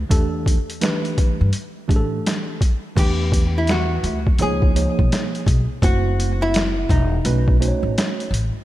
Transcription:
0.10 E2 E3 A3 D4 G4 A4, kick, closed hi-hat
0.46 kick, closed hi-hat
0.70 closed hi-hat
0.81 E3 A3 D4 G4 B4, snare, closed hi-hat
1.05 closed hi-hat
1.18 kick, closed hi-hat
1.41 G2
1.53 closed hi-hat
1.88 A2 E3 A3 D4 G4 G#4, kick, closed hi-hat
1.96 A4
2.26 snare, closed hi-hat
2.61 kick, closed hi-hat
2.95 E2 E3 A3 D4 G4 B4, kick, closed hi-hat, crash
3.32 kick, closed hi-hat
3.58 E4
3.67 F#4, snare, closed hi-hat
4.03 D2, closed hi-hat
4.27 kick
4.38 C#2 F3 A#3 D#4 G#4 C#5, closed hi-hat
4.62 kick
4.75 F3 A#3 D#4 G#4 C#5, closed hi-hat
4.99 B1, kick
5.12 snare, closed hi-hat
5.35 closed hi-hat
5.46 B1, kick, closed hi-hat
5.82 F#1 A3 C4 E4 F#4 C5, kick, closed hi-hat
6.20 closed hi-hat
6.42 E4
6.54 snare, closed hi-hat
6.89 E1 D#4, kick, closed hi-hat
7.25 B1 A3 C#4 D#4 F#4 B4, closed hi-hat
7.48 kick
7.60 A3 C#4 D#4 F#4 C5, closed hi-hat
7.68 C#5
7.83 A1
7.98 snare, closed hi-hat
8.20 closed hi-hat
8.31 A1, closed hi-hat

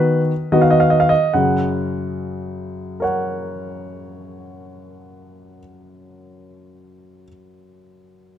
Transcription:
Already playing: D#3 B3 F#4 B4
0.52 D#3 B3 F#4 D#5
0.61 F5
0.70 D#5
0.80 F5
0.90 D#5
1.00 F5
1.09 D#5
1.34 F#2 C#3 F#5
3.00 A#4 C#5 F#5

